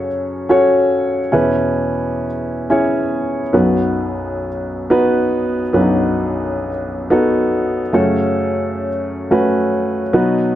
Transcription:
Already playing: F#2 C#3 C#4 F#4 A4 C#5
0.49 C#4 F#4 A4 C#5
1.32 E2 B2 C#4 E4 G#4 B4
2.70 C#4 E4 G#4 C#5
3.53 B1 F#2 B3 D#4 F#4 B4
4.90 B3 D#4 F#4 B4
5.73 B1 F#2 B3 D4 F#4 B4
5.80 D#4
7.10 B3 D#4 F#4 A4
7.93 F#2 C#3 A3 C#4 F#4 A4
9.31 A3 C#4 F#4 B4
10.13 B2 F#3 B3 D#4 F#4 B4

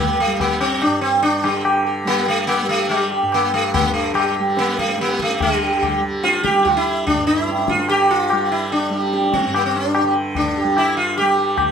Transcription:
Already playing: G2 D3 G3 A#3 G4
0.20 A3
0.27 G3
0.40 A#3, tabla tin, tabla ge
0.61 C4, tabla na
0.82 D4, tabla na
0.86 G2
1.01 C4
1.23 D4, tabla na
1.44 D3 G3, tabla na
1.65 G4, tabla na
1.86 G4
2.04 G3 A#3, tabla tin
2.28 A3
2.47 A#3, tabla na
2.62 G3
2.69 A3
2.89 G3, tabla na
3.12 G4
3.23 G2
3.32 A#3, tabla na
3.54 A3
3.74 A#3, tabla tin, tabla ge
3.80 D3
3.94 A3
4.14 G3, tabla na
4.37 G3 G4
4.57 A#3, tabla te
4.68 tabla te
4.79 A3, tabla ke
4.89 tabla te
4.97 G3 A#3, tabla te
5.09 tabla te
5.19 A3, tabla ke
5.30 tabla te
5.40 D3 G3 G4, tabla tin, tabla ge
5.63 G4
5.83 G4, tabla tin, tabla ge
6.00 G3
6.23 F4, tabla te
6.35 tabla te
6.43 G4, tabla ke
6.55 G3, tabla te
6.65 F4, tabla tin, tabla ge
6.77 E4
7.07 D4, tabla tin, tabla ge
7.17 G2
7.27 D#4
7.42 E4
7.47 G4, tabla te
7.59 tabla te
7.68 F4, tabla ke
7.74 D3
7.78 tabla te
7.89 G4, tabla na
8.11 F4
8.30 G3 G4, tabla na
8.52 E4
8.71 D4, tabla tin
8.90 G3 G4
9.13 G4, tabla te
9.24 tabla te
9.34 C4, tabla ke
9.44 G2, tabla te
9.54 A#3, tabla na
9.66 C4
9.76 D4
9.95 G4, tabla na
10.04 D3
10.35 D4, tabla tin, tabla ge
10.57 G4
10.64 G3
10.77 E4, tabla na
10.97 F4
11.18 G3 G4, tabla na
11.38 G4
11.57 G4, tabla na, tabla ge

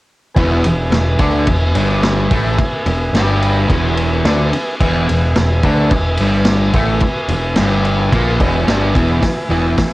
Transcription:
0.34 E1 E2 E3 B4 E5 G#5, kick, ride
0.64 E1 E2, ride
0.90 E1 E2, snare, ride
1.19 D2 D3 D4, kick, ride
1.47 E1 E2, kick, ride
1.75 G1 G2 G3, ride
2.03 snare, ride
2.31 A1 A2 A3, kick, ride
2.58 muted picked electric bass stroke, muted distorted electric guitar stroke, kick, ride
2.86 E1 E2, ride
3.13 G1 G2 G3, snare, ride
3.42 ride
3.69 E1 E2 E3, kick, ride
3.97 ride
4.24 D2 D3 D4, snare, ride
4.53 muted picked electric bass stroke, muted distorted electric guitar stroke, ride
4.79 E1 E2 E3 B4 E5 G#5, kick, crash
5.09 E1 E2, ride
5.35 E1 E2, snare, ride
5.63 D2 D3 D4, kick, ride
5.90 E1 E2, kick, ride
6.17 G1 G2, ride
6.21 G3
6.45 snare, ride
6.73 A1 A2 A3, kick, ride
7.00 muted picked electric bass stroke, muted distorted electric guitar stroke, kick, ride
7.28 E1 E2, ride
7.56 G1 G2 G3, snare, ride
7.85 ride
8.12 A#1 A#2 A#3, kick, ride
8.40 E1 E2 E3, kick, ride
8.67 G1 G2 G3, snare, ride
8.95 E1 E2 E3, kick, ride
9.20 B4 E5 G#5, muted distorted electric guitar stroke, kick, snare, open hi-hat
9.49 E1 E2 E3
9.78 muted distorted electric guitar stroke, kick, snare, open hi-hat

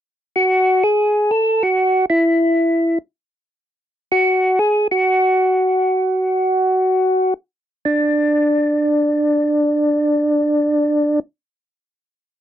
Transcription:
0.36 F#4
0.83 G#4
1.31 A4
1.63 F#4
2.10 E4
4.12 F#4
4.59 G#4
4.91 F#4
7.85 D4

